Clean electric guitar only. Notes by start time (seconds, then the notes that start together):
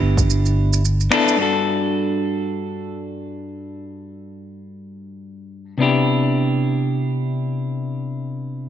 Already playing: B3 D4 E4 G4
1.11 B3 D4 E4 A4
1.37 G2 B3 D4
1.41 F#4 A4
5.78 C3 B3 D4
5.82 E4 G4